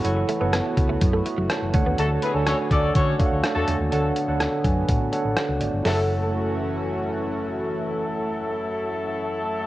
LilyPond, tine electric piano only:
<<
  \new Staff \with { instrumentName = "Tine electric piano" } { \time 4/4 \key fis \minor \tempo 4 = 124 << { r2 r8 <e'' cis'''>8 <cis'' a''>4 | r1 | r4. gis''8 fis''8 a''8 fis''8 d''8 | r1 |
r1 | } \\ { <e' a' cis'' fis''>8. <e' a' cis'' fis''>4. r4 r16 <d' a' cis'' fis''>8~ | <d' a' cis'' fis''>8 r16 <d' a' cis'' gis''>4. r16 <d' a' cis'' eis'' fis''>4~ <d' a' cis'' eis'' fis''>16 r16 | <d' a' cis'' fis''>8. <d' a' cis'' fis''>4. r16 <d' a' cis'' fis''>4~ <d' a' cis'' fis''>16 r16 | <e' a' cis'' fis''>1~ |
<e' a' cis'' fis''>1 | } >> }
  \new Staff \with { instrumentName = "Tine electric piano" } { \clef bass \time 4/4 \key fis \minor r2. r8 d8~ | d4 r2 r8 d8~ | d4 r2. | fis,1~ |
fis,1 | }
>>